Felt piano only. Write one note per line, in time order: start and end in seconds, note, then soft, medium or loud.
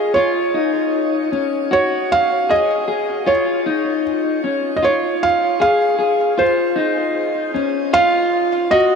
0.14 1.27 C#5 medium
1.73 2.08 C#5 medium
2.12 2.51 F5 loud
2.50 3.30 D#5 medium
3.27 4.01 C#5 medium
4.76 4.83 D#5 medium
4.84 5.24 C#5 medium
5.23 5.60 F5 medium
5.62 6.41 F5 medium
6.39 7.52 C5 medium
7.94 8.74 F5 loud
8.71 8.95 D#5 medium